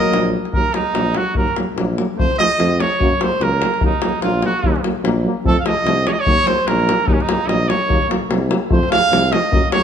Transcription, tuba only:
0.13 A#1
0.54 D#2
0.95 A#1
1.36 D#2
1.76 A#1
2.17 F2
2.59 F2
3.00 F#2
3.40 C#2
3.82 D#2
4.23 A#1
4.63 D#2
5.03 A#1
5.45 F2
5.84 C2
6.27 D#2
6.67 A#1
7.08 D#2
7.48 A#1
7.89 D#2
8.30 C2
8.71 F2
9.11 C2
9.52 F#2

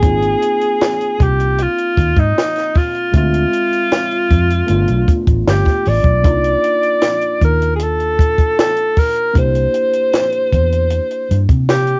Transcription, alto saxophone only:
Already playing: G#4
1.23 G4
1.62 F4
2.19 D#4
2.77 F4
3.17 F4
5.49 G4
5.89 D5
7.45 A#4
7.76 G#4
7.83 A4
8.60 A4
8.99 A#4
9.38 C5
11.70 G4

